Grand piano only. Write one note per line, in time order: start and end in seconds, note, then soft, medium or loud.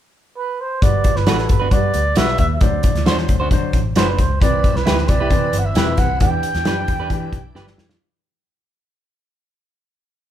0.82 1.09 G3 medium
0.82 1.09 F#4 medium
0.82 1.09 B4 medium
1.27 1.54 G3 medium
1.27 1.54 F#4 medium
1.27 1.54 A4 medium
1.72 1.98 G3 medium
1.72 1.99 F#4 medium
1.72 1.99 B4 medium
2.17 2.43 G3 medium
2.17 2.44 F#4 medium
2.17 2.44 B4 medium
2.62 2.88 F#3 medium
2.62 2.89 D4 medium
2.62 2.89 C5 medium
3.07 3.33 F#3 medium
3.07 3.34 D4 medium
3.07 3.34 C5 medium
3.51 3.78 F#3 medium
3.51 3.78 D4 medium
3.51 3.79 C5 medium
3.96 4.23 F#3 medium
3.96 4.23 D4 medium
3.96 4.23 C5 medium
4.41 4.68 E3 medium
4.41 4.68 C4 medium
4.41 4.68 B4 medium
4.86 5.13 E3 medium
4.86 5.13 C4 medium
4.86 5.13 B4 medium
5.31 5.58 E3 medium
5.31 5.58 C4 medium
5.31 5.58 B4 medium
5.76 6.02 E3 medium
5.76 6.03 C4 medium
5.76 6.03 B4 medium
6.20 6.47 E3 medium
6.20 6.48 D4 medium
6.20 6.48 G4 medium
6.65 6.92 E3 medium
6.65 6.92 D4 medium
6.65 6.93 G4 medium
7.10 7.37 E3 medium
7.10 7.37 D4 medium
7.10 7.38 G4 medium
7.55 7.82 E3 medium
7.55 7.82 D4 medium
7.55 7.82 G4 medium